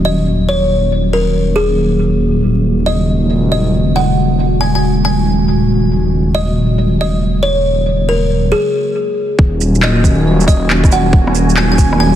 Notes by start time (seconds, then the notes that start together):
Already playing: D#1 D#3 F#3 A#3 C#4 F#4
0.05 D#5
0.49 C#5
1.13 A#4
1.56 G#4
2.43 D#1 C#3 G#3 F#4
2.86 D#5
3.52 D#5
3.96 F#5
4.61 G#5
4.75 G#5
5.05 G#5
6.35 D#5
7.01 D#5
7.43 C#5
8.09 A#4
8.52 G#4
9.38 D#1 D#3 F#3 A#3 C#4 F#4 G#5, kick
9.61 shaker
9.75 shaker
9.82 D#5, clap
10.04 kick, shaker
10.41 shaker
10.48 D#5, kick, shaker
10.70 clap
10.84 kick, cross-stick, shaker
10.92 F#5, shaker
11.13 kick
11.27 cross-stick
11.35 shaker
11.50 shaker
11.57 G#5, clap
11.72 G#5
11.78 kick, shaker
11.93 cross-stick
12.00 G#5